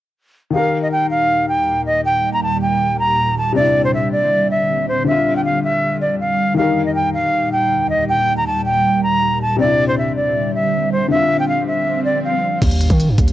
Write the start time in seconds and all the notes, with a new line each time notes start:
0.51 D#2 A#2 D#3 G3 D#4 F5
0.55 G4 A#4
0.82 D#5
0.92 G5
1.10 F5
1.49 G5
1.86 D#5
2.05 G5
2.33 A#5
2.43 A5
2.62 G5
2.99 A#5
3.38 A5
3.52 C3 G3 C4 D5
3.57 D4 E4
3.85 C5
3.94 E5
4.12 D5
4.51 E5
4.89 C5
5.04 D3 D4 E5
5.11 F4
5.36 G5
5.45 F5
5.64 E5
6.01 D5
6.21 F5
6.54 D#2 A#2 D#3 G3 D#4 F5
6.59 G4 A#4
6.86 D#5
6.95 G5
7.14 F5
7.52 G5
7.90 D#5
8.09 G5
8.37 A#5
8.47 A5
8.65 G5
9.03 A#5
9.42 A5
9.56 C3 G3 C4 D5
9.61 D4 E4
9.88 C5
9.98 E5
10.16 D5
10.54 E5
10.92 C5
11.08 D3 D4 E5, swell
11.15 F4
11.40 G5
11.49 F5
11.67 E5
12.05 D5
12.24 F5
12.62 D#2, kick, closed hi-hat, crash, impact
12.71 closed hi-hat
12.81 closed hi-hat
12.90 D#3, kick, closed hi-hat
13.00 closed hi-hat
13.09 G2
13.18 D#2, kick, closed hi-hat
13.28 closed hi-hat